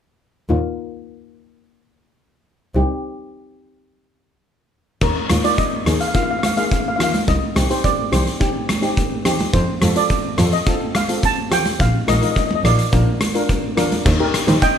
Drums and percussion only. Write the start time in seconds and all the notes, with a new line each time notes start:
5.01 kick, crash
5.30 cross-stick, closed hi-hat, high conga
5.44 closed hi-hat
5.58 kick, closed hi-hat
5.86 cross-stick, closed hi-hat, low conga
6.01 closed hi-hat
6.14 kick, closed hi-hat
6.43 cross-stick, closed hi-hat, high conga
6.57 closed hi-hat
6.71 kick, closed hi-hat
7.00 cross-stick, closed hi-hat, low conga
7.14 closed hi-hat, high conga
7.28 kick, closed hi-hat
7.56 cross-stick, closed hi-hat, high conga
7.71 closed hi-hat
7.84 kick, closed hi-hat
8.13 cross-stick, closed hi-hat, low conga
8.27 closed hi-hat
8.41 kick, closed hi-hat
8.69 cross-stick, closed hi-hat, high conga
8.83 closed hi-hat
8.97 kick, closed hi-hat
9.25 cross-stick, closed hi-hat, low conga
9.39 closed hi-hat, high conga
9.53 kick, closed hi-hat
9.82 cross-stick, closed hi-hat, high conga
9.96 closed hi-hat
10.10 kick, closed hi-hat
10.38 cross-stick, closed hi-hat, low conga
10.52 closed hi-hat
10.66 kick, closed hi-hat
10.95 cross-stick, closed hi-hat, high conga
11.09 closed hi-hat
11.23 kick, closed hi-hat
11.51 cross-stick, closed hi-hat, low conga
11.66 closed hi-hat, high conga
11.80 kick, closed hi-hat
12.08 cross-stick, closed hi-hat, high conga, low conga
12.23 closed hi-hat
12.36 kick, closed hi-hat
12.51 high conga
12.64 cross-stick, closed hi-hat, low conga
12.79 closed hi-hat
12.93 kick, closed hi-hat
13.21 cross-stick, closed hi-hat, high conga
13.35 closed hi-hat
13.49 kick, closed hi-hat
13.77 cross-stick, closed hi-hat, low conga
13.92 closed hi-hat, high conga
14.06 kick, crash
14.34 cross-stick, closed hi-hat
14.48 closed hi-hat, high conga
14.62 kick, closed hi-hat